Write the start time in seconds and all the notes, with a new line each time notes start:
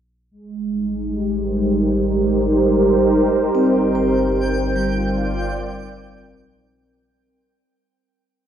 0.31 G#1 G3 G#3 D#4
0.70 D#4
1.03 G4
1.32 C5
1.39 A#4
3.54 G1 C4 G5
3.95 C5
4.76 G3
4.91 F4
4.99 D5
5.56 A#4
5.97 C4